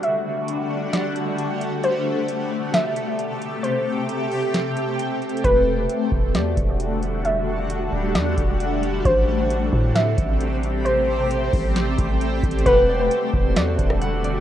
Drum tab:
HH |x-----------x-----------x-----x-----x-----x-----|x-----------x-----------x-----x-----x-----x-----|x-----------x-----o-----x-----x-----x-----x-x-x-|x-----------x-----------x-----x-----x-----x-----|
SD |------------------------o-----------------------|------------------------o-----------------------|------------------------o-----------------------|------------------------o-----------------------|
BD |------------------------------------------------|------------------------------------------------|------------------------------------------------|o-----------------o-----------o-----------------|

HH |x-----------x-----------x-----x-----x-----x-----|x-----------x-----------x-----x-----x-----x-----|x-----------x-----o-----x-----x-----x-----x-x-x-|x-----------x-----------x-----x-----x-----x-----|
SD |------------------------o-----------------------|------------------------o-----------------------|------------------------o-----------------------|------------------------o--------r--------------|
BD |------------------------------o-----------------|o-----------------o-----------o-----------------|------------------o-----------o-----------o-----|o-----------------o-----------o-----------------|